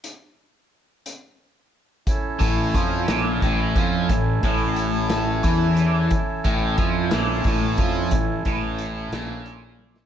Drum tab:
HH |x-----x-----|x-x-x-x-x-x-|x-x-x-x-x-x-|x-x-x-x-x-x-|
SD |------------|------o-----|------o-----|------o-----|
T1 |------------|------------|------------|------------|
BD |------------|o-o-o---o-o-|o-o-----o---|o-o-o---o-o-|

HH |x-x-x-x-x---|
SD |------o----o|
T1 |----------o-|
BD |o-o---------|